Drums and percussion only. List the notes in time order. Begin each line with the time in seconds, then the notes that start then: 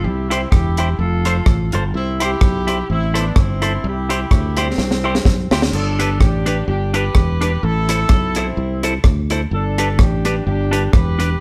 0.31 closed hi-hat
0.52 kick, cross-stick
0.77 closed hi-hat
1.25 closed hi-hat
1.46 kick, cross-stick
1.72 closed hi-hat
2.20 closed hi-hat
2.41 kick, cross-stick
2.68 closed hi-hat
3.15 closed hi-hat
3.36 kick, cross-stick
3.62 closed hi-hat
4.10 closed hi-hat
4.31 kick, cross-stick
4.57 closed hi-hat
4.78 snare
4.91 snare
5.15 snare
5.25 kick, snare
5.51 snare
5.62 snare
5.73 crash
6.00 closed hi-hat
6.20 kick, cross-stick
6.46 closed hi-hat
6.94 closed hi-hat
7.15 kick, cross-stick
7.42 closed hi-hat
7.89 closed hi-hat
8.09 kick, cross-stick
8.35 closed hi-hat
8.83 closed hi-hat
9.04 kick, cross-stick
9.30 closed hi-hat
9.78 closed hi-hat
9.99 kick, cross-stick
10.25 closed hi-hat
10.73 closed hi-hat
10.93 kick, cross-stick
11.20 closed hi-hat